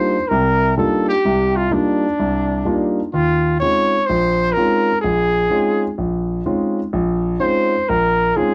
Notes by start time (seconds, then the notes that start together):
Already playing: G3 A#3 D4 D#4 F4 C5
0.29 C2 C3 A#4
0.78 G3 A#3 D4 D#4 F4 A4
1.09 G4
1.25 C2 C3
1.57 F4
1.71 G3 A#3 D4 D#4 F4
2.19 C2
2.65 G3 A#3 D4 D#4 F4
3.13 D#2 F4
3.60 G#3 C4 C#4 D#4 F4 C#5
4.06 A#1 C5
4.53 G#3 C#4 A#4
4.57 C4 D#4 F4
5.01 A#1 G#4
5.50 G#3 C4 C#4 D#4 F4
5.98 A#1
6.46 G#3 C4 C#4 D#4 F4
6.93 A#1
7.40 G#3 C4 C#4 D#4 F4 C5
7.89 A#1 A#4
8.36 G#3 C4 C#4 D#4 F4 G#4